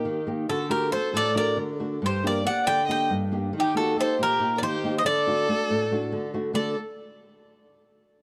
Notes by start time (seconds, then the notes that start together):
Already playing: A#3 D#4 G4 A#4
0.05 D#3
0.27 A#3 D#4 G4
0.49 D3 F#4 A4
0.69 A3 D4 F#4 G4 A#4
0.92 A3 D4 F#4 A4 C5
1.13 A2 A4 D5
1.35 A3 D4 F#4 A#4 D5
1.57 D3
1.79 A3 D4 F#4
2.02 G2 G4 C5
2.24 A#3 D4 G4 A#4 D5
2.44 A#3 D4 G4 D5 F#5
2.63 D3 D5 G5
2.87 A#3 D4 G4 D#5 G5
3.10 G2
3.31 A#3 D4 G4
3.53 D#3
3.58 D#4 G4
3.75 A#3 D#4 F#4 G4 A4
3.97 A#3 D#4 G4 A4 C5
4.19 A#2 G4 A#4
4.39 A#3 D#4 G4
4.55 A#4 D5
4.62 D#3 G4 C5
4.84 A#3 D#4 G4
4.98 C5 D#5
5.05 D3 A4 D5
5.27 A3 D4 F#4
5.49 A3 D4 F#4
5.70 A2
5.91 A3 D4 F#4
6.12 D3
6.34 A3 D4 F#4
6.53 D3 A3 D4 F#4 A4 D5